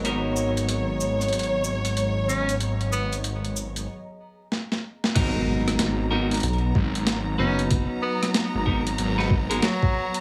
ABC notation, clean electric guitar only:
X:1
M:4/4
L:1/16
Q:"Swing 16ths" 1/4=94
K:G#m
V:1 name="Clean electric guitar"
[B,DFA]16- | [B,DFA]8 z8 | [B,DFA]6 [B,DFA] z6 z [B,DFB]2- | [B,DFB]6 [B,DFA] z2 [B,DFB] z [B,DFA] z4 |]